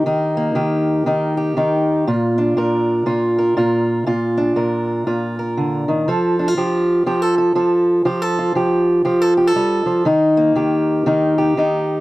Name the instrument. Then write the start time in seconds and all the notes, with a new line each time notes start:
steel-string acoustic guitar
Already playing: A#3 G4
0.06 D#3 D#4
0.37 A#3
0.55 D#3 G4
1.06 D#3 D#4
1.37 G4
1.57 D#3 D#4
2.07 A#2 F4
2.38 D4
2.57 A#2 A#4
3.06 A#2 F4
3.38 A#4
3.57 A#2 F4
4.07 A#2 F4
4.37 D4
4.56 A#2 A#4
5.07 A#2 F4
5.39 A#4
5.57 D3
5.88 D#3
6.08 F3 A4
6.39 D4
6.48 F4
6.57 F3 G4
7.06 F3 G4
7.22 A4
7.38 A4
7.55 F3 A4
8.05 F3 G4
8.22 A4
8.39 F4
8.55 F3 G4
9.05 F3 G4
9.22 A4
9.37 G4
9.47 A4
9.56 G3
9.86 F3
10.05 D#3 D#4
10.37 A#3
10.56 D#3 G4
11.06 D#3 D#4
11.38 G4
11.57 D#3 D#4